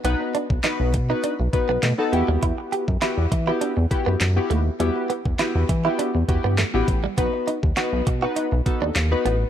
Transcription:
<<
  \new Staff \with { instrumentName = "Synth keys" } { \time 4/4 \key e \minor \tempo 4 = 101 <b dis' fis' b'>8 r8 <b dis' fis' b'>8 r16 <b dis' fis' b'>8 r16 <b dis' fis' b'>8 r16 <b dis' fis' a'>16 <b e' fis' g'>8~ | <b e' fis' g'>8. r16 <b e' fis' g'>8 r16 <b e' fis' g'>8 r16 <b e' fis' g'>8 r16 <b e' fis' g'>8 r16 | <b e' fis' g'>8 r8 <b e' fis' g'>8 r16 <b e' fis' g'>8 r16 <b e' fis' g'>8 r16 <b e' fis' g'>8 r16 | <b dis' fis' b'>8 r8 <b dis' fis' b'>8 r16 <b dis' fis' b'>8 r16 <b dis' fis' a'>8 r16 <b dis' fis' b'>8 r16 | }
  \new Staff \with { instrumentName = "Clean electric guitar" } { \time 4/4 \key e \minor b16 r16 d'16 r16 dis'16 r8 dis'16 d'16 r8 b16 a16 r8 g16 | e'16 r16 g'16 r16 e'16 r8 e'16 d'16 r8 b16 r8 a16 r16 | g16 r16 b16 r16 e'16 r8 e'16 d'16 r8 b16 a16 r8 g16 | b16 r16 dis'16 r16 fis'16 r8 fis'16 dis'16 r8 d'16 r8 b16 r16 | }
  \new Staff \with { instrumentName = "Analog synth bass" } { \clef bass \time 4/4 \key e \minor b,,16 r8 b,,16 r16 b,,16 b,8 r16 b,,16 r16 b,,16 b,16 r16 e,16 dis,16 | e,16 r8 fis,16 r16 e,16 e8 r16 e,16 r16 fis,16 fis,8 dis,8 | e,16 r8 e,16 r16 e,16 e8 r16 e,16 e,16 g,8 a,,16 a,,8 | b,,16 r8 dis,16 r16 b,,16 b,8 r16 b,,16 r16 dis,16 dis,8 a,,8 | }
  \new DrumStaff \with { instrumentName = "Drums" } \drummode { \time 4/4 hh8 hh16 bd16 <hc hh sn>8 <hh bd>8 hh8 <hh bd>8 <hc hh sn>8 hh8 | <hh bd>8 hh16 bd16 <hc hh sn>8 <hh bd>8 hh8 <hh bd>8 <hc hh sn>8 hh8 | hh8 hh16 bd16 <hc hh sn>8 <hh bd>8 hh8 <hh bd>8 <hc hh sn>8 <hh bd>8 | <hh bd>8 hh16 bd16 <hc hh sn>8 <hh bd>8 hh8 <hh bd>8 <hc hh sn>8 hh8 | }
>>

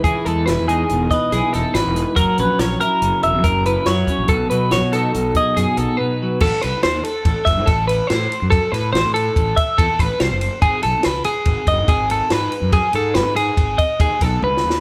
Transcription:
<<
  \new Staff \with { instrumentName = "Clean electric guitar" } { \time 5/4 \key a \lydian \tempo 4 = 142 gis'8 a'8 b'8 gis'4 dis''8 gis'8 a'8 b'4 | ais'8 b'8 cis''8 ais'4 e''8 ais'8 b'8 cis''4 | a'8 b'8 cis''8 a'4 dis''8 gis'8 a'8 b'4 | a'8 b'8 c''8 a'4 e''8 a'8 b'8 c''4 |
a'8 b'8 c''8 a'4 e''8 a'8 b'8 c''4 | gis'8 a'8 b'8 gis'4 dis''8 gis'8 a'8 b'4 | gis'8 a'8 b'8 gis'4 dis''8 gis'8 a'8 b'4 | }
  \new Staff \with { instrumentName = "Clean electric guitar" } { \time 5/4 \key a \lydian << { r4 e'8 dis'4 b'8 e'8 dis'4. | r4 ais'8 e'4 ais'8 ais'8 e'4. | r4 fis'8 dis'4 gis'8 fis'8 dis'4. | r1 r4 |
r1 r4 | r1 r4 | r1 r4 | } \\ { e8 gis4. b,2 e8 gis8 | fis8 cis'4. cis2 fis8 cis'8 | b,8 fis4. b,2 b,8 fis8 | r1 r4 |
r1 r4 | r1 r4 | r1 r4 | } >> }
  \new Staff \with { instrumentName = "Fingered electric bass" } { \clef bass \time 5/4 \key a \lydian cis,16 r16 e,8 e,,16 e,8. e,,8 r8 b,,16 r16 e,,16 r16 gis,,16 e,,8 r16 | fis,,16 r16 ais,,16 r16 ais,,8 r8 fis,,16 r16 e,,16 fis,16 fis,,4 fis,8 r16 ais,,16 | b,,8 b,8 b,,16 b,8. b,,8 r8 fis,16 r16 b,,16 r4 r16 | a,,16 r16 c,16 r16 dis,8 r8 a,,16 r16 fis,,16 a,16 a,,4 a,8 r16 fis,16~ |
fis,16 r16 a,8 a,,16 a,8. a,,8 r8 e,16 r16 a,,16 r16 c,16 fis,,8 r16 | gis,,16 r16 b,,16 r16 cis,8 r8 gis,,16 r16 fis,,16 gis,16 gis,,4 gis,8 r16 fis,16~ | fis,16 r16 gis,8 gis,,16 gis,8. gis,,8 r8 dis,16 r16 b,,8 cis,8 dis,8 | }
  \new DrumStaff \with { instrumentName = "Drums" } \drummode { \time 5/4 <hh bd>8 hh8 <hh sn>8 hh8 hh8 <hh bd sn>8 <hh sn>8 <hh sn>8 <hh sn>8 <hh sn>8 | <hh bd>8 hh8 <hh sn>8 hh8 hh8 hh8 <hh bd>8 hh8 <hh sn>8 <hh bd>8 | <hh bd>8 hh8 <hh sn>8 <hh sn>8 hh8 <hh bd>8 <hh sn>8 hh8 r4 | <cymc bd>8 <cymr sn>8 <cymr sn>8 cymr8 <bd cymr>8 <bd cymr sn>8 <bd cymr sn>8 cymr8 <cymr sn>8 cymr8 |
<bd cymr>8 <cymr sn>8 <cymr sn>8 cymr8 <bd cymr>8 <bd cymr>8 <bd cymr>8 <bd cymr sn>8 <cymr sn>8 cymr8 | <bd cymr>8 <cymr sn>8 <cymr sn>8 cymr8 <bd cymr>8 <bd cymr>8 <bd cymr>8 cymr8 <cymr sn>8 cymr8 | <bd cymr>8 cymr8 <cymr sn>8 cymr8 <bd cymr>8 <bd cymr>8 <bd cymr>8 <bd cymr sn>8 \tuplet 3/2 { tommh8 sn8 sn8 } | }
>>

